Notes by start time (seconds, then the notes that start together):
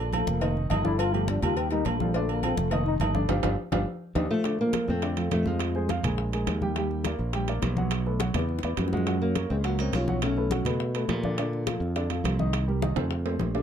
Already playing: A#1
0.00 F3
0.13 F3 A3 F4 A4, cowbell, high conga, low timbale, low agogo
0.27 F1 A#3, high conga
0.41 D#3 D#4 D#5, cowbell, high conga, low agogo
0.57 high conga
0.70 G1 D#3 D#4 D#5, cowbell, high conga, low timbale, low agogo
0.84 D3 D4 E4 D5, high conga
0.99 F4, cowbell, high conga, low agogo
1.13 F3 A3 F4 G4, high conga, low agogo
1.28 D4, cowbell, high conga, low timbale
1.42 D#2 G3 F4 G4 A#4, cowbell, low conga, low agogo
1.57 G4, cowbell, high conga, low agogo
1.71 G3 D#4 G4 A#4, cowbell, high conga
1.85 A#1 A#3, cowbell, high conga, low timbale, low agogo
2.00 F3 G3 F4 A4, high conga
2.14 D3 A3 D4 D5, cowbell, high conga
2.29 A#3, high conga, low agogo
2.43 F3 C4 F4 A4, cowbell, high conga, low timbale, low agogo
2.57 F1 A3, high conga
2.71 D#3 A#3 D#4 D#5, cowbell, high conga, low agogo
2.86 D#4, high conga
3.00 G1 D#3 D#4 D#5, cowbell, high conga, low timbale, low agogo
3.14 D3 D4 D5, high conga
3.29 G1 D4 F4 G4, cowbell, high conga, high timbale
3.43 G1 D4 F4 G4, cowbell, high conga, high timbale
3.72 G1 D4 F4 G4, cowbell, high conga, high timbale
4.15 D#2 D4 D#4 G4, cowbell, high conga, high timbale
4.30 F3 A3
4.44 D3 D4 D5, high bongo, high conga, high timbale
4.59 F3 A#3, high conga
4.73 F3 F4 A4, high bongo, high conga, high timbale, low timbale
4.88 F2 A3 C4, high bongo, high conga
5.02 D3 D4 D5, high bongo, high conga, high timbale
5.17 F3 F4 A4, high bongo, high conga, high timbale
5.31 F2 F3 A3, high bongo, low bongo, high conga, high timbale, low timbale
5.46 F3 G#3 F4 F5, high bongo, high conga
5.59 high bongo, high conga, high timbale
5.75 G#3 G#4 C5, high conga
5.89 F3 F4 F5, high bongo, high conga, high timbale, low timbale
6.03 A#1 G#3 G#4 A#4, high bongo, high conga, low conga, high timbale
6.18 high bongo, high conga
6.32 G#3 G#4 A#4, high bongo, high conga, high timbale
6.47 D#2, high bongo, low bongo, high conga, high timbale, low timbale
6.61 G3 G4 G5, high bongo, high conga
6.76 G3 G4 G5, high bongo, high conga, high timbale
6.91 high conga
7.04 A#3 A#4 D5, high bongo, high conga, high timbale, low timbale
7.19 A#1, high bongo, high conga
7.33 G3 G4 G5, high bongo, high conga, high timbale
7.48 A#3 A#4 D5, high bongo, high conga, high timbale
7.62 B1, high bongo, low bongo, high conga, high timbale, low timbale
7.76 F#3 F#4 F#5, high bongo, high conga
7.91 high bongo, high conga, high timbale
8.06 A3 A4 B4, high conga
8.20 F#3 F#4 F#5, high bongo, high conga, high timbale, low timbale
8.34 E2 B3 B4 D5, high conga, low conga, high timbale
8.39 high bongo
8.49 high conga
8.59 low bongo
8.63 E2 B3 B4 D5, high conga, high timbale
8.77 F#2, low bongo, high conga, high timbale, low timbale
8.88 low bongo
8.93 F3 F#3 G#3 F#4 F#5, high conga
8.97 low bongo
9.07 F#3 F#4 F#5, high bongo, high conga, high timbale
9.21 F#3 A#3, high conga
9.35 A#3 A#4 C#5, high bongo, high conga, high timbale, low timbale
9.50 C#2 G#3 C4, high bongo, high conga
9.64 F#3 A#3 C#4 F#4 F#5, high bongo, high conga, high timbale
9.79 A#3 C4 D#4 A#4 C#5, high bongo, high conga, high timbale
9.93 B1 C#4 F4, high bongo, low bongo, high conga, high timbale, low timbale
10.08 F#3 F#4 F#5, high bongo, high conga
10.22 A3 C#4, high bongo, high conga, high timbale
10.37 A3 A4 B4, high conga
10.51 F#3 F#4 F#5, high bongo, high conga, high timbale, low timbale
10.65 B2 A3 A4 B4, high bongo, high conga, low conga, high timbale
10.80 high bongo, high conga
10.94 A3 A4 B4, high bongo, high conga, high timbale
11.09 A#2, high bongo, low bongo, high conga, high timbale, low timbale
11.23 D3 D4 D5, high bongo, high conga
11.38 D3 D4 D5, high bongo, high conga, high timbale
11.53 high conga
11.67 F3 F4 A4, high bongo, high conga, high timbale, low timbale
11.80 F2, high bongo, high conga
11.96 D3 D4 D5, high bongo, high conga, high timbale
12.10 F3 F4 A4, high bongo, high conga, high timbale
12.24 C2, high bongo, low bongo, high conga, high timbale, low timbale
12.39 D#3 D#4 D#5, high bongo, high conga
12.53 high bongo, high conga, high timbale
12.68 G3 G4 A#4, high conga
12.82 D#3 D#4 D#5, high bongo, high conga, high timbale
12.96 F2 A3 A4 C5, high conga, low conga, high timbale
13.11 high bongo, high conga
13.26 A3 A4 C5, high bongo, high conga, low timbale
13.39 A#1, high bongo, low bongo, high conga, low timbale
13.55 D3 D4 D5, high bongo, low timbale